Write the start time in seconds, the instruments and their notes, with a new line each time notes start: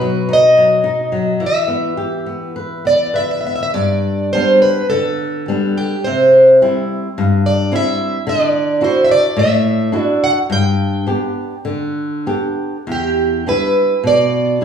Already playing: nylon-string guitar B2, twelve-string acoustic guitar B4
0.01 nylon-string guitar F#3
0.29 nylon-string guitar D#4
0.33 twelve-string acoustic guitar D#5
0.57 nylon-string guitar F#3
0.84 nylon-string guitar D#4
1.12 nylon-string guitar F#3
1.40 nylon-string guitar E3
1.46 twelve-string acoustic guitar E5
1.68 nylon-string guitar B3
1.97 nylon-string guitar G4
2.26 nylon-string guitar B3
2.56 nylon-string guitar B4
2.85 nylon-string guitar B3, twelve-string acoustic guitar D5
3.14 nylon-string guitar B4, twelve-string acoustic guitar E5
3.24 twelve-string acoustic guitar E5
3.31 twelve-string acoustic guitar E5
3.41 twelve-string acoustic guitar E5
3.45 nylon-string guitar B3, twelve-string acoustic guitar E5
3.56 twelve-string acoustic guitar E5
3.63 twelve-string acoustic guitar E5
3.74 nylon-string guitar G2, twelve-string acoustic guitar D5
4.33 nylon-string guitar G3 B3 D4, twelve-string acoustic guitar C5
4.62 twelve-string acoustic guitar B4
4.90 nylon-string guitar D3, twelve-string acoustic guitar A4
5.48 nylon-string guitar G3 B3 D4
5.78 twelve-string acoustic guitar G4
6.04 nylon-string guitar C3, twelve-string acoustic guitar C5
6.62 nylon-string guitar G3 C4 E4
7.18 nylon-string guitar G2
7.46 twelve-string acoustic guitar D5
7.71 nylon-string guitar G3 C4 E4
7.76 twelve-string acoustic guitar E5
8.27 nylon-string guitar D3, twelve-string acoustic guitar D5
8.81 nylon-string guitar D4 E4 F#4, twelve-string acoustic guitar C5
9.04 twelve-string acoustic guitar E5
9.11 twelve-string acoustic guitar D5
9.37 nylon-string guitar A2, twelve-string acoustic guitar E5
9.92 nylon-string guitar D4 E4 F#4
10.00 twelve-string acoustic guitar D5
10.24 twelve-string acoustic guitar F#5
10.50 nylon-string guitar G2, twelve-string acoustic guitar G5
11.06 nylon-string guitar B3 D4 G4
11.65 nylon-string guitar D3
12.26 nylon-string guitar B3 D4 G4
12.87 nylon-string guitar E2
12.92 twelve-string acoustic guitar G4
13.46 nylon-string guitar G3 D4 E4, twelve-string acoustic guitar B4
14.04 nylon-string guitar B2, twelve-string acoustic guitar D5
14.61 nylon-string guitar G3 D4